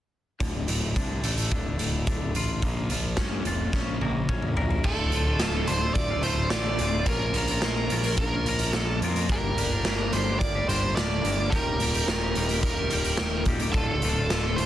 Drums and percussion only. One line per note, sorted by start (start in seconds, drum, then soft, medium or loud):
0.40 kick medium
0.40 closed hi-hat soft
0.68 closed hi-hat medium
0.96 kick medium
0.96 closed hi-hat medium
1.24 closed hi-hat medium
1.37 closed hi-hat medium
1.51 kick medium
1.51 closed hi-hat medium
1.79 closed hi-hat medium
2.07 kick loud
2.07 closed hi-hat medium
2.35 closed hi-hat medium
2.62 kick medium
2.62 closed hi-hat medium
2.90 closed hi-hat medium
3.17 kick loud
3.17 snare loud
3.17 closed hi-hat medium
3.45 closed hi-hat medium
3.73 kick medium
3.73 snare soft
4.01 high tom medium
4.29 kick loud
4.29 mid tom medium
4.42 mid tom medium
4.57 floor tom medium
4.70 floor tom medium
4.84 kick medium
4.84 crash medium
5.12 closed hi-hat medium
5.40 snare loud
5.40 closed hi-hat medium
5.67 closed hi-hat medium
5.95 kick medium
5.95 closed hi-hat medium
6.23 closed hi-hat medium
6.50 snare loud
6.50 closed hi-hat medium
6.79 closed hi-hat medium
7.06 kick medium
7.06 closed hi-hat medium
7.34 closed hi-hat medium
7.48 closed hi-hat medium
7.62 snare loud
7.62 closed hi-hat medium
7.90 closed hi-hat medium
8.04 closed hi-hat medium
8.17 kick loud
8.17 closed hi-hat medium
8.46 closed hi-hat medium
8.59 closed hi-hat medium
8.73 snare loud
8.73 closed hi-hat medium
9.02 closed hi-hat medium
9.16 closed hi-hat medium
9.29 kick medium
9.29 closed hi-hat medium
9.58 closed hi-hat medium
9.85 snare loud
9.85 closed hi-hat medium
10.13 closed hi-hat medium
10.41 kick medium
10.41 closed hi-hat medium
10.69 closed hi-hat medium
10.97 snare loud
10.97 closed hi-hat medium
11.25 closed hi-hat medium
11.52 kick medium
11.52 closed hi-hat medium
11.80 closed hi-hat medium
11.94 closed hi-hat medium
12.08 snare loud
12.08 closed hi-hat medium
12.35 closed hi-hat medium
12.49 closed hi-hat medium
12.63 kick medium
12.63 closed hi-hat medium
12.90 closed hi-hat medium
13.04 closed hi-hat medium
13.17 snare loud
13.17 closed hi-hat medium
13.45 kick medium
13.45 closed hi-hat medium
13.60 closed hi-hat medium
13.74 kick loud
13.74 closed hi-hat soft
14.02 closed hi-hat medium
14.30 snare loud
14.30 closed hi-hat medium
14.58 closed hi-hat medium